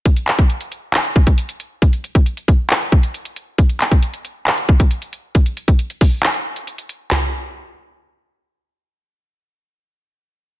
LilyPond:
\new DrumStaff \with { instrumentName = "Drums" } \drummode { \time 4/4 \tempo 4 = 136 <hh bd>16 hh16 <hc hh>16 <hh bd>16 hh16 hh16 hh8 <hc hh>16 hh16 bd16 <hh bd>16 hh16 hh16 hh8 | <hh bd>16 hh16 hh16 <hh bd>16 hh16 hh16 <hh bd>8 <hc hh>16 hh16 bd16 hh16 hh16 hh16 hh8 | <hh bd>16 hh16 <hc hh>16 <hh bd>16 hh16 hh16 hh8 <hc hh>16 hh16 bd16 <hh bd>16 hh16 hh16 hh8 | <hh bd>16 hh16 hh16 <hh bd>16 hh16 hh16 <hho bd>8 <hc hh>16 hh8 hh16 hh16 hh16 hh8 |
<hc sn tomfh>4 r4 r4 r4 | r4 r4 r4 r4 | }